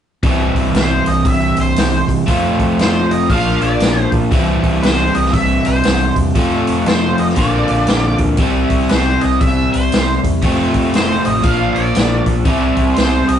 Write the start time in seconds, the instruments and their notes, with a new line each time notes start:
0.23 fingered electric bass C2, overdriven electric guitar C3 E3 G3 C4 E4, kick, open hi-hat
0.55 fingered electric bass C2, kick, open hi-hat
0.74 fingered electric bass C2, lead electric guitar C5, snare, open hi-hat
1.06 fingered electric bass C2, lead electric guitar D#5, open hi-hat
1.25 fingered electric bass C2, lead electric guitar E5, kick, open hi-hat
1.56 fingered electric bass C2, open hi-hat
1.61 lead electric guitar C5
1.76 fingered electric bass C2, snare, open hi-hat
2.08 fingered electric bass C3, kick, open hi-hat
2.27 fingered electric bass F1, overdriven electric guitar F3 A3 C4 F4, kick, open hi-hat
2.59 fingered electric bass F1, kick, open hi-hat
2.78 fingered electric bass F1, lead electric guitar C5, snare, open hi-hat
3.10 fingered electric bass F1, lead electric guitar D#5, open hi-hat
3.30 fingered electric bass A#1, overdriven electric guitar A#2 F3 A#3 D4, lead electric guitar F5, kick, open hi-hat
3.34 overdriven electric guitar F4
3.61 fingered electric bass A#1, lead electric guitar D5, open hi-hat
3.79 fingered electric bass A#1, snare, open hi-hat
4.12 fingered electric bass A#2, kick, open hi-hat
4.31 fingered electric bass C2, overdriven electric guitar C3 E3 G3 C4 E4, kick, open hi-hat
4.63 fingered electric bass C2, kick, open hi-hat
4.83 fingered electric bass C2, lead electric guitar C5, snare, open hi-hat
5.15 fingered electric bass C2, lead electric guitar D#5, open hi-hat
5.26 snare
5.32 fingered electric bass C2, lead electric guitar E5, kick, open hi-hat
5.65 fingered electric bass C2, lead electric guitar C5, open hi-hat
5.83 fingered electric bass C2, snare, open hi-hat
6.16 fingered electric bass E2, kick, open hi-hat
6.35 fingered electric bass F1, overdriven electric guitar F3 A3 C4 F4, kick, open hi-hat
6.67 fingered electric bass F1, open hi-hat
6.86 fingered electric bass F1, lead electric guitar C5, snare, open hi-hat
7.18 fingered electric bass F1, lead electric guitar D#5, open hi-hat
7.29 snare
7.35 fingered electric bass A#1, overdriven electric guitar A#2 D3 F3 A#3, lead electric guitar D5, kick, open hi-hat
7.40 overdriven electric guitar F4
7.68 fingered electric bass A#1, open hi-hat
7.87 fingered electric bass A#1, snare, open hi-hat
8.18 fingered electric bass D2, kick, open hi-hat
8.37 fingered electric bass C2, overdriven electric guitar C3 G3, kick, open hi-hat
8.41 overdriven electric guitar C4 E4
8.70 fingered electric bass C2, kick, open hi-hat
8.89 fingered electric bass C2, lead electric guitar C5, snare, open hi-hat
9.21 fingered electric bass C2, lead electric guitar D#5, open hi-hat
9.40 fingered electric bass C2, lead electric guitar E5, kick, open hi-hat
9.72 fingered electric bass C2, lead electric guitar C5, open hi-hat
9.92 fingered electric bass C2, snare, open hi-hat
10.24 fingered electric bass E2, kick, open hi-hat
10.42 fingered electric bass F1, overdriven electric guitar F2 C3 F3 A3 C4, kick, open hi-hat
10.74 fingered electric bass F1, kick, open hi-hat
10.94 fingered electric bass F1, lead electric guitar C5, snare, open hi-hat
11.25 fingered electric bass A1, lead electric guitar D#5, open hi-hat
11.43 fingered electric bass A#1, overdriven electric guitar A#2 F3 A#3 D4, lead electric guitar F5, kick, open hi-hat
11.75 fingered electric bass A#1, lead electric guitar D5, open hi-hat
11.95 fingered electric bass A#1, snare, open hi-hat
12.26 fingered electric bass B1, kick, open hi-hat
12.45 fingered electric bass C2, overdriven electric guitar C3 G3 C4 E4, kick, open hi-hat
12.77 fingered electric bass C2, kick, open hi-hat
12.94 fingered electric bass C2, lead electric guitar C5, open hi-hat
12.98 snare
13.28 fingered electric bass C2, lead electric guitar D#5, open hi-hat